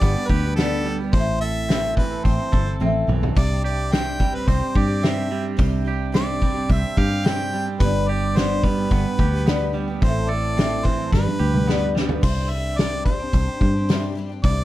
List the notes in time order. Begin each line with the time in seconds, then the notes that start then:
Already playing: G2 G3 B3 D4 G4 D5
0.01 G1 B3, kick, open hi-hat
0.15 G3 B3 D4 G4
0.28 D2 G4 B4, kick
0.44 G3 B3 D4 G4
0.56 G2 D3 G3 B3 D4 A4, snare, open hi-hat
0.60 G4
0.85 G3 B3 D4 G4
1.00 G3 B3 D4 G4
1.13 A1 A2 E3 A3 C4 C5, kick, open hi-hat
1.17 E4 A4
1.41 A3 C4 E4 A4 E5
1.46 A4
1.69 A2 E3 A3 C4 E4, snare, open hi-hat
1.73 A4
1.96 E3 A3 C4 B4, kick
2.00 E4 A4
2.11 A3 C4 E4 A4
2.24 A1 C4 C5, kick, open hi-hat
2.38 C4 E4 A4
2.43 A3
2.52 G1 A4, kick
2.66 A3 C4 E4 A4
2.80 A1 A2 E3 A3 C4 E4 A4, high tom
3.07 B1 E3 A3 C4 E4 A4, mid tom
3.22 A3 C4 E4 A4, floor tom
3.35 C2 C3 G3 C4 D4 G4 D5, kick, open hi-hat, splash
3.63 G3 C4 D4 D5
3.67 G4
3.92 C3 G3 C4 D4 G4 G5, snare, open hi-hat
4.19 G3 C4 D4 G4, kick
4.32 C4 D4 G4 B4
4.47 C2 C4 C5, kick, open hi-hat
4.60 C4 D4 G4
4.75 G2 G4 D5, kick
4.88 C4 D4 G4
5.01 C3 G3 C4 D4 G4, snare, open hi-hat
5.05 E5
5.29 G3 C4 D4 G4
5.43 C4 D4 G4
5.57 C2 C3 G3 C4 D4 G4, kick, open hi-hat
5.85 G3 C4 D4 G4
6.12 C3 G3 C4 D4 G4 D5, snare, open hi-hat
6.40 G3 C4 D4 G4, kick
6.54 C4 D4 G4
6.69 C2 C4 E5, kick, open hi-hat
6.82 C4 D4 G4
6.97 G2 G4 F5, kick
7.09 C4 D4 G4
7.24 C3 G3 C4 D4 G4 G5, snare, open hi-hat
7.52 G3 C4 D4 G4
7.66 C4 D4 G4
7.80 G1 G2 D3 G3 B3 D4 G4 B4, kick, open hi-hat
8.08 G3 B3 D4 G4 D5
8.36 G2 D3 G3 B3 D4 G4 C5, snare, open hi-hat
8.63 G3 B3 D4 G4 B4, kick
8.77 G3 B3 D4 G4
8.91 G1 B3, kick, open hi-hat
9.05 B3 D4 G4
9.09 G3
9.19 D2 G4, kick
9.33 G3 B3 D4 G4
9.46 G2 D3 G3 B3 D4 G4, snare, open hi-hat
9.73 G3 B3 D4 G4
9.88 G3 B3 D4 G4
10.02 A1 A2 E3 A3 C4 E4 A4 C5, kick, open hi-hat
10.29 A3 C4 E4 A4 D5
10.57 A2 E3 A3 C4 E4 A4, snare, open hi-hat
10.84 E3 A3 C4 E4 A4 C5, kick
10.97 A3 C4 E4 A4
11.12 G1 G2 D3 G3 B3 D4 B4, kick, snare
11.24 G3 B3 D4 B4, high tom
11.40 D2 G4
11.52 G3 B3 D4 B4, mid tom
11.66 G2 D3 G3 B3 D4 B4, snare
11.95 G3 B3 D4 B4, snare
12.09 G3 B3 D4 B4, floor tom
12.22 C2 C3 G3 C4 D4 G4 C5, kick, crash
12.50 G3 C4 D4 G4 E5
12.78 C3 G3 C4 D4 G4 D5, snare, open hi-hat
13.05 G3 C4 D4 C5, kick
13.10 G4
13.19 C4 D4 G4
13.33 C2, kick, open hi-hat
13.47 C4 D4 G4
13.61 G2, kick
13.76 C4 D4 G4
13.89 C3 G3 C4 D4 G4, snare, open hi-hat
14.15 G3 C4 D4 G4
14.29 C4 D4 G4
14.44 C2 C3 G3 C4 D4 G4 D5, kick, open hi-hat